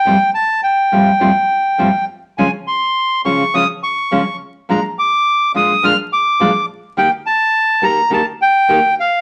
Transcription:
X:1
M:4/4
L:1/8
Q:1/4=104
K:Fmix
V:1 name="Bandoneon"
g a g4- g z | _a c'2 _d' e' d'2 z | b d'2 e' f' d'2 z | g a2 b a g2 f |]
V:2 name="Nylon-string guitar" clef=bass
[F,,A,,F,G,CF] z2 [F,,A,,F,G,CF] [F,,A,,F,G,CF] z [F,,A,,F,G,CF] z | [_D,F,_A,_DF] z2 [D,F,A,DF] [D,F,A,DF] z [D,F,A,DF] z | [B,,F,_A,DF] z2 [B,,F,A,DF] [B,,F,A,DF] z [B,,F,A,DF] z | [E,B,EG] z2 [E,B,EG] [E,B,EG] z [E,B,EG] z |]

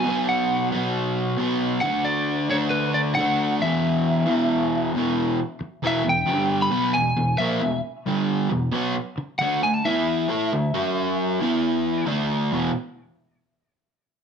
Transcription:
X:1
M:4/4
L:1/16
Q:1/4=135
K:Dlyd
V:1 name="Lead electric guitar"
g2 f4 z8 z2 | f2 d4 c2 B2 d2 f4 | e12 z4 | z4 e2 =g4- g b3 ^g2- |
g2 e4 z8 z2 | z4 f2 g a e8- | e12 z4 | z16 |]
V:2 name="Overdriven electric guitar" clef=bass
[B,,F,B,]6 [B,,F,B,]6 [B,,F,B,]4 | [D,A,D]6 [D,A,D]6 [D,A,D]4 | [E,,B,,E,]6 [E,,B,,E,]6 [E,,B,,E,]4 | z4 [E,,B,,E,]2 [E,,B,,]2 [=G,,D,=G,]4 [B,,F,B,]2 [E,,B,,]2 |
[E,,B,,]2 [^A,,=F,^A,]2 [E,,B,,]2 z2 [=G,,D,=G,]4 [E,,B,,]2 [B,,^F,B,]2 | z4 [D,A,D]2 [D,A,]2 [E,B,E]4 [A,EA]2 [D,A,]2 | [F,CF]6 [E,B,E]6 [D,A,D]4 | [E,,B,,E,]2 z12 z2 |]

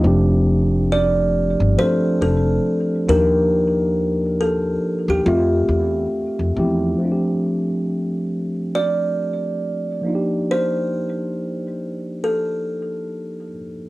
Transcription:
X:1
M:4/4
L:1/16
Q:"Swing 16ths" 1/4=69
K:Fmix
V:1 name="Kalimba"
z4 d4 c2 A4 B2- | B4 A3 G F6 z2 | z8 d8 | c8 A6 z2 |]
V:2 name="Tine electric piano"
[F,A,CDG]6 z2 [F,A,CDA]4 z2 [F,B,DEG]2- | [F,B,DEG]4 z4 [A,CFG=e]4 z2 [F,A,C=EG]2 | [F,A,CDFG]12- [F,A,CDFG]2 [F,B,DEFG]2- | [F,B,DEFG]12- [F,B,DEFG]2 z2 |]
V:3 name="Upright bass" clef=bass
F,,,6- F,,, G,,, z2 F,,,2 z2 E,,2- | E,,6- E,, E,, F,,2 =E,,2 z F,, E,,2 | z16 | z16 |]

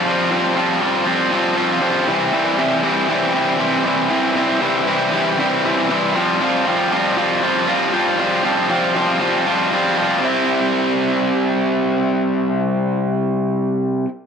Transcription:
X:1
M:4/4
L:1/8
Q:1/4=118
K:C
V:1 name="Overdriven electric guitar" clef=bass
[F,G,CF] [F,G,CF] [F,G,CF] [F,G,CF] [F,G,CF] [F,G,CF] [F,G,CF] [F,G,CF] | [C,E,G,CE] [C,E,G,CE] [C,E,G,CE] [C,E,G,CE] [C,E,G,CE] [C,E,G,CE] [C,E,G,CE] [C,E,G,CE] | [C,E,G,CE] [C,E,G,CE] [C,E,G,CE] [C,E,G,CE] [C,E,G,CE] [C,E,G,CE] [C,E,G,CE] [C,E,G,CE] | [F,G,CF] [F,G,CF] [F,G,CF] [F,G,CF] [F,G,CF] [F,G,CF] [F,G,CF] [F,G,CF] |
[F,G,CF] [F,G,CF] [F,G,CF] [F,G,CF] [F,G,CF] [F,G,CF] [F,G,CF] [F,G,CF] | [C,G,CE]8- | [C,G,CE]8 |]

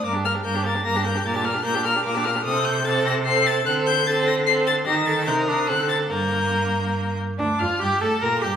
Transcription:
X:1
M:3/4
L:1/16
Q:1/4=148
K:Gm
V:1 name="Violin"
d'2 f'2 g'2 a'2 b'2 g'2 | a'2 f'2 g'2 f'2 d'2 f'2 | e'2 g'2 a'2 b'2 c''2 a'2 | ^f'2 g'2 a'2 b'2 c''2 a'2 |
b'2 a'2 g'2 e'2 ^f'2 a'2 | g'8- g'2 z2 | d'2 f'2 g'2 a'2 b'2 g'2 |]
V:2 name="Violin"
B G B G B G B G B G B G | B G B G B G B G B G B G | A4 A4 A4 | A4 A4 A4 |
G2 A2 B4 A4 | B8- B2 z2 | D2 F2 G2 A2 B2 G2 |]
V:3 name="Viola"
B, D B, D B, D B, D B, D B, D | B, D B, D B, D B, D B, D B, D | C4 C4 C4 | C4 C4 C4 |
E4 E2 D2 C4 | B,8- B,2 z2 | D2 F2 G2 A2 B2 G2 |]
V:4 name="Cello" clef=bass
G,,4 G,,4 G,,4 | B,,4 B,,4 B,,4 | C,12 | D,12 |
E,4 C,4 D,4 | G,,8- G,,2 z2 | D,,2 F,,2 G,,2 A,,2 B,,2 G,,2 |]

